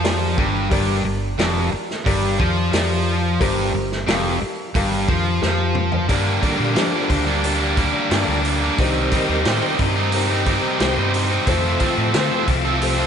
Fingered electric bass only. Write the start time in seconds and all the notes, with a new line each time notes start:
Already playing: F2
0.38 G1
0.72 G1
1.05 G1
1.39 F1
1.73 muted fingered electric bass stroke
2.06 G1
2.40 F2
2.73 F2
3.40 G1
3.74 G1
4.08 F1
4.42 muted fingered electric bass stroke
4.75 G1
5.09 F2
5.43 F2
6.09 G2
6.59 A#2
6.76 F3
7.10 D2
8.11 G2
8.28 D2
8.79 C2
9.29 D#2
9.45 A2
9.79 G2
10.80 C2
10.97 G2
11.47 F2
11.97 A2
12.14 D3
12.48 C2